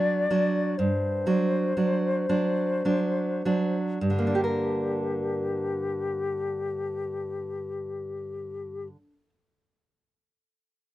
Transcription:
0.00 0.26 F#3 soft
0.00 0.26 D4 soft
0.00 0.80 D5 medium
0.31 0.74 F#3 soft
0.31 0.74 D4 soft
0.78 1.25 G2 soft
0.78 3.78 C5 medium
1.27 1.72 F#3 soft
1.27 1.72 D4 soft
1.77 2.25 F#3 soft
1.77 2.25 D4 soft
2.29 2.81 F#3 soft
2.29 2.81 D4 soft
2.85 3.41 F#3 soft
2.85 3.41 D4 soft
3.45 3.98 F#3 soft
3.45 3.98 D4 soft
4.01 8.87 G2 soft
4.01 8.87 G4 soft
4.10 8.96 D3 soft
4.19 9.04 A#3 soft
4.27 9.12 D4 soft
4.35 4.43 G4 soft
4.44 9.29 A#4 soft

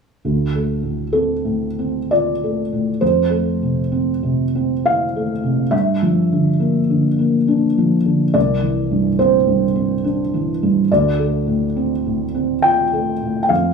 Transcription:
0.25 2.98 D2 soft
0.55 1.02 A3 soft
0.83 1.32 A2 soft
1.13 1.65 C4 soft
1.13 2.10 A4 soft
1.45 1.98 A2 soft
1.79 2.30 C4 soft
2.11 2.60 F4 soft
2.11 3.01 D5 medium
2.44 2.90 A3 soft
2.73 3.02 A2 soft
3.01 5.69 F2 soft
3.01 4.85 C5 medium
3.30 3.79 A3 soft
3.62 4.11 C3 soft
3.92 4.42 C4 soft
4.23 4.73 C3 soft
4.55 5.03 C4 soft
4.85 5.32 E4 soft
4.85 5.73 F5 medium
5.16 5.62 A3 soft
5.43 5.73 C3 soft
5.71 8.31 G2 soft
5.71 8.34 E5 medium
6.02 6.49 F3 soft
6.32 6.79 D3 soft
6.60 7.07 A#3 soft
6.90 7.37 D3 soft
7.19 7.66 A#3 soft
7.48 7.95 D4 soft
7.78 8.24 F3 soft
8.05 8.34 D3 soft
8.34 10.85 C2 soft
8.34 9.18 D5 medium
8.63 9.08 E3 soft
8.91 9.36 G2 soft
9.19 9.64 C4 soft
9.19 10.03 C5 medium
9.47 9.92 G2 soft
9.75 10.21 C4 soft
10.04 10.50 D4 soft
10.34 10.79 E3 soft
10.63 10.90 G2 soft
10.92 13.47 D2 soft
10.92 12.66 D5 medium
11.19 11.64 A3 soft
11.46 11.92 A2 soft
11.76 12.23 C4 soft
12.06 12.54 A2 soft
12.35 12.83 C4 soft
12.62 13.11 F4 soft
12.62 13.41 G5 medium
12.93 13.39 A3 soft
13.22 13.50 A2 soft
13.43 13.50 G5 soft
13.49 13.74 F2 soft
13.49 13.74 F5 medium

